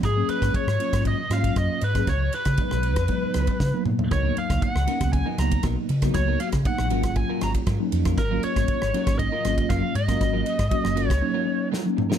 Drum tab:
RD |x-xxx-xxx-xxx-xx|x-xxx-xxx-xx----|x-xxx-xxx-xxx-xx|x-xxx-xxx-xxx-xx|
SD |r--r-r-r--r-r--r|r--r-r-r--r-o---|r--r-r-r--r-r--r|r--r-r-r--r-r--r|
T2 |----------------|--------------o-|----------------|----------------|
FT |----------------|---------------o|----------------|----------------|
BD |o--oo--oo--oo--o|o--oo--oo--oo---|o--oo--oo--oo--o|o--oo--oo--oo--o|

RD |x-xxx-xxx-xxx-xx|x-xxx-xx--------|
SD |r--r-r-r--r-r--r|r--r-r-r----o--o|
T2 |----------------|--------------o-|
FT |----------------|----------------|
BD |o--oo--oo--oo--o|o--oo--o--------|